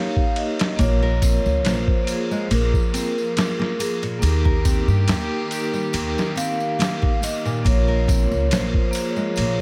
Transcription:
Already playing: A#3 D#4 G4 A#4 C#5 F5
0.17 kick
0.36 D#5, ride
0.59 snare, ride
0.76 A#1 F3 A#3 C#5, kick, ride
0.81 F4 A#4, tambourine
1.03 A#4
1.22 C4, kick, ride, tambourine
1.46 C#2, tambourine
1.65 A#1 C5, snare, ride, tambourine
1.88 kick
2.04 A#3, ride, tambourine
2.10 F4 G#4
2.31 G#3, tambourine
2.51 A#1 A#3 A#4, ride, tambourine
2.74 kick, tambourine
2.94 C4, ride, tambourine
3.18 tambourine
3.37 A#3, snare, ride, tambourine
3.59 A#3, snare
3.79 A#3 G#4, ride, tambourine
4.03 A#2, ride, tambourine
4.19 D#2 D#3 A#3 D#4 G4, ride, tambourine
4.24 G4 A#4
4.45 A#4, kick
4.65 C4, kick, ride, tambourine
4.88 G2, tambourine
5.08 D#2, snare, ride, tambourine
5.48 A#3 D#4, ride, tambourine
5.53 G4 A#4
5.73 G3, tambourine
5.93 D#2 A#3, ride, tambourine
6.18 snare, tambourine
6.36 C4 F5, ride, tambourine
6.60 tambourine
6.79 A#3, snare, ride, tambourine
7.02 A#3, kick
7.22 A#3 D#5, ride, tambourine
7.45 A#2, tambourine
7.62 A#1 F3 A#3, kick, ride, tambourine
7.67 F4 A#4 C#5
7.88 A#4
8.08 C4, kick, ride, tambourine
8.31 C#2, tambourine
8.51 A#1 C5, snare, ride, tambourine
8.74 kick
8.91 A#3, tambourine
8.95 F4 G#4, ride
9.09 C#5
9.16 G#3, tambourine
9.36 A#1 A#3, ride, tambourine

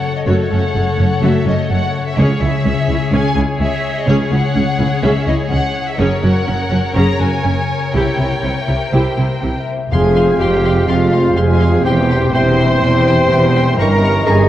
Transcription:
Already playing: F#2 C#3 A3 A4 C#5 F#5
0.11 F#4
0.16 D#5
0.27 F#1 F#2 A3 F#4 C#5
0.43 A3
0.51 F#1 F#2 A3 C#4 F#5
0.60 C#3
0.75 F#1 F#2 A3 F#4
0.91 C#5
0.98 F#1 F#2 A3 C#4
1.07 F#4
1.22 F#1 F#2 C#3 A3 F#4 E5
1.38 F#4
1.45 F#1 F#2 A3 C#4 D#5
1.54 A3
1.70 F#1 F#2 A3 F#4 F#5
1.86 C#5
2.02 F#4
2.06 E5
2.17 C#2 C#3 C#4 G#4 C#5
2.33 G#4
2.41 C#2 C#4 E4 E5
2.49 G#3
2.65 C#2 C#4 G#4
2.81 C#5
2.88 C#2 C#4 E4
2.96 G#4
3.12 C#2 C#4 G#4 G#5
3.28 G#4
3.35 C#2 C#4 E4
3.45 G#3
3.59 C#2 C#4 G#4 E5
3.75 C#5
3.92 G#4
3.97 D#5
4.06 C#2 C#3 C#4 G#4 C#5
4.24 G#3
4.31 C#2 C#4 E4 F#5
4.41 C#4
4.55 C#2 C#4 G#4
4.71 C#5
4.78 C#2 C#4 E4
4.87 G#4
5.03 C#2 C#4 G#4 E5
5.19 G#4
5.27 C#2 C#4 E4 D#5
5.35 G#3
5.50 C#2 C#4 G#4 F#5
5.67 C#5
5.83 G#4
5.89 E5
5.98 F#1 F#2 C#4 G#4 A#4 C#5
6.16 G#4
6.22 F#1 F#2 C#4 F#4 F#5
6.32 A#3
6.46 F#1 F#2 C#4 G#4
6.63 C#5
6.71 F#1 F#2 C#4 F#4
6.80 G#4
6.95 F#1 F#2 C#3 C#4 G#4 A#5
7.19 F#1 F#2 C#4 F#4 G#5
7.28 A#3
7.43 F#1 F#2 C#4 G#4
7.62 C#5
7.78 G#4
7.93 C2 C3 E4 G4 G5
8.12 G4
8.17 C2 C3 E4
8.28 A#3
8.42 C2 C3 C4 E4 G4
8.61 E5
8.68 C2 C3 E4
8.77 G4
8.93 C2 C3 G3 E4 G4 C5
9.10 G4
9.18 C2 C3 E4
9.26 A#3
9.42 C2 C3 C4 E4 G4
9.60 E5
9.76 G4
9.90 F1 F2 C3 G#3 C4 F4 G#4 F5 G#5 C6
10.08 C4
10.15 F5 C6
10.24 C5
10.40 F1 F2 C4 G4 F5 G5 C6
10.56 C3
10.64 F5 C6
10.72 C4
10.88 F1 F2 C3 F4 F5 C6
11.05 C4
11.12 F5 C6
11.21 C5
11.36 F1 F2 C4 G#4 C5 F5 G#5 C6
11.53 C3
11.59 F5 C6
11.70 C4
11.84 E1 E2 E3 G4 G5 C6
12.02 G3
12.10 G5 C6
12.19 C5
12.33 E1 E2 G3 C5 E5 G5 C6
12.51 E3
12.59 G5 C6
12.67 G3
12.81 E1 E2 G5 C6
12.99 E3
13.07 G5 C6
13.16 C5
13.30 E1 E2 G3 E5 G5 C6
13.47 E3
13.56 G5 C6
13.64 G3
13.78 G1 G2 C#4 A#4 D#5 A#5 C#6
13.95 A#3
14.04 A#5 C#6
14.11 C#5
14.26 G1 G2 A#3 G#4 G#5 A#5 C#6
14.43 G3

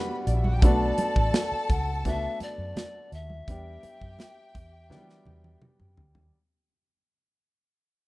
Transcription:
Already playing: G3 B3 D4 F#4 B4 B5
0.27 A#1 D4 D5, closed hi-hat
0.35 E4 E5
0.44 F#4 F#5, high conga
0.53 G4 G5
0.62 B1 A3 B3 D4 F#4 A4 D5 A5, kick, closed hi-hat
0.98 closed hi-hat, muted conga
1.16 A1, kick
1.34 snare, closed hi-hat, high conga
1.52 muted fingered electric bass stroke
1.70 C#2 F#5, kick, closed hi-hat, muted conga
2.05 A3 B3 D4 F#4 E5, kick, closed hi-hat, muted conga, low conga
2.40 D5, muted fingered electric bass stroke, closed hi-hat, muted conga
2.58 F#2
2.76 snare, closed hi-hat, high conga
3.12 D#2 E5, closed hi-hat
3.30 high conga
3.48 E2 G3 B3 D4 G4 G5, kick, closed hi-hat
3.83 muted fingered electric bass stroke, closed hi-hat, muted conga
4.01 F#2, kick
4.19 snare, closed hi-hat, high conga
4.54 E2, kick, closed hi-hat, muted conga
4.90 E3 F#3 B3 D4 G4, snare, low conga
4.96 G3
5.09 snare
5.25 E2, high tom, muted conga, low conga
5.44 high tom
5.62 mid tom, high conga
5.80 F#2, mid tom
5.97 D2, floor tom
6.15 D#2, floor tom, high conga

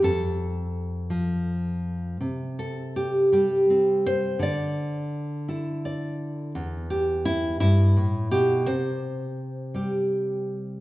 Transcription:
0.02 F2 A4
1.10 F3
2.21 C3
2.59 A4
2.96 G4
3.32 G3 G4
3.70 C4
4.07 C5
4.39 D3 D5
5.48 E4 A4
5.85 D5
6.55 E2
6.90 G4
7.25 E4
7.60 G2 E4
7.97 A2
8.31 B2 G4
8.66 C3 C5
9.74 G3 G4

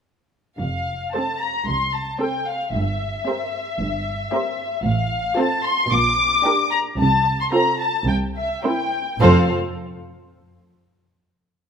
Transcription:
0.59 F1 F2 F5
1.14 C4 A4 C5 A5
1.40 A#5
1.67 C2 C6
1.94 A5
2.20 C4 A4 C5 G5
2.47 F5
2.74 G1 G2 E5
3.26 C4 G4 A#4 C5
3.80 G1 G2
4.33 C4 G4 A#4 C5
4.85 A1 A2 F5
5.37 C4 F4 A4 C5 A5
5.64 C6
5.91 A#1 A#2 D6
6.45 D4 G4 A#4
6.71 A#5
6.99 C2 C3 A5
7.40 C6
7.52 C4 F4 A4 A#5
7.80 A5
8.07 C2 C3 G5
8.36 E5
8.63 C4 E4 A#4 C5 G5
9.21 F1 F2 C4 F4 A4 C5 F5

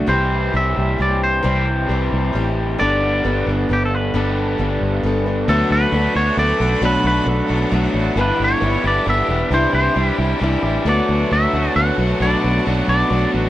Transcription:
0.06 C2 C3 E3 G3 C4 G4 C5
0.10 G4
0.53 C2 E3 G3 C4 G4 E5
0.76 C2 G3 C4 G4
0.98 C2 E3 G3 C4 G4 D5
1.23 C5
1.42 C2 C3 E3 G3 C4 G4
1.89 C2 E3 G3 C4 G4
2.12 C2
2.33 A1 E3 G3 C4 G4
2.78 G1 G2 D3 G3 B3 D4 G4 A4 D5
3.24 G1 G3 B3 D4 A4
3.47 G1 B3 D4 A4
3.69 G1 G3 B3 D4 A4
3.73 G4
3.85 A4
3.95 B4
4.14 G1 G2 D3 G3 B3 D4 G4 A4
4.58 G1 G3 B3 D4 A4
4.81 G1
5.03 G1 G3 B3 D4 A4
5.26 B3 D4 A4
5.48 D2 D3 F#3 A3 B3 D4 F#4 A4 D5 F#5 B5
5.71 D2 A3 D4 F#4 B4
5.92 D2 D3 F#3 A3 B3 D4 F#4 A4
6.15 D2 D3 A3 B3 D4 F#4 A4 C#5
6.37 D2 D3 F#3 A3 B3 D4 F#4 A4 D5
6.59 B1 A3 B3 D4 F#4 A4
6.63 A3
6.82 B1 B2 F#3 A3 B3 D4 F#4 A4 B4
7.04 B1 B3 D4 F#4 B4
7.26 B1 F#3 A3 B3 D4 F#4 A4
7.49 B1 B2 F#3 B3 D4 F#4
7.70 B1 F#3 A3 B3 D4 F#4 A4
7.94 A1 B3 D4 F#4
8.16 G1 G2 D3 E3 G3 B3 D4 E4 G4 B4 E5 G5
8.21 B4
8.40 G1 G3 B3 D4 G4
8.44 C#5
8.61 G1 E3 G3 B3 D4 E4 G4
8.84 G1 G2 D3 G3 B3 D4 G4 D5
9.05 G1 E3 G3 B3 D4 E4 G4
9.10 E5
9.28 E1 G3 B3 D4 G4
9.50 C2 C3 E3 G3 D4 E4 G4 C5 E5
9.73 C2 G3 E4 G4 C5
9.95 C2 E3 G3 D4 E4 G4
10.06 B4
10.18 C2 C3 E3 G3 E4 G4
10.40 C2 E3 G3 D4 E4 G4
10.63 A1 G3 E4 G4
10.85 D2 D3 F#3 A3 B3 D4 F#4
10.89 B4 D5 F#5 A5
11.09 D2 A3 D4 F#4
11.31 D2 D3 F#3 A3 B3 D4 F#4 E5
11.53 D2 D3 F#3 A3 B3 D4 F#4
11.76 D2 D3 F#3 A3 B3 D4 F#4 F#5
11.97 B1 A3 B3 D4 F#4
12.02 A3
12.20 B1 B2 F#3 A3 B3 D4 F#4 D5
12.43 B1 B3 D4 F#4
12.65 B1 F#3 A3 B3 D4 F#4
12.88 B1 B2 F#3 B3 D4 F#4 D5
13.10 B1 F#3 A3 B3 D4 F#4
13.33 A1 B3 D4 F#4

